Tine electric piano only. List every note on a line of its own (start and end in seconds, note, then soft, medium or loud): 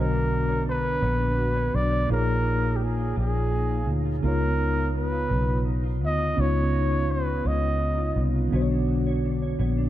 0.00 2.04 D3 medium
0.00 2.05 B3 medium
0.00 2.05 D4 soft
0.00 2.06 F#4 soft
0.00 0.12 A#4 soft
0.00 0.11 D#5 medium
2.07 4.18 A#2 soft
2.07 4.19 A#3 medium
2.07 4.19 D#4 medium
2.07 4.20 F4 medium
2.12 4.21 G#4 medium
2.12 4.21 C#5 medium
4.21 6.32 C#3 medium
4.21 6.33 B3 soft
4.21 6.34 D#4 medium
4.26 6.35 F4 medium
4.26 6.36 C#5 medium
6.35 8.47 B3 medium
6.35 8.46 C#4 medium
6.35 8.48 D#4 medium
6.40 8.49 F4 medium
6.40 8.50 C#5 medium
8.49 9.89 D3 medium
8.49 9.89 B3 medium
8.49 9.89 D4 medium
8.54 9.89 F#4 medium
8.54 8.60 C5 medium
8.62 9.89 C#5 medium